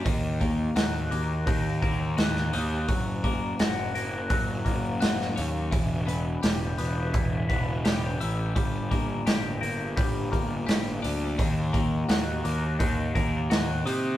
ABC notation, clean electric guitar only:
X:1
M:4/4
L:1/8
Q:1/4=85
K:Eblyd
V:1 name="Clean electric guitar"
E, B, _G B, E, B, G E | ^F, ^A, ^F A, F, A, F ^C | =E, =B, G B, E, B, G =E | G, B, G B, G, B, G D |
E, B, _G B, E, B, G E |]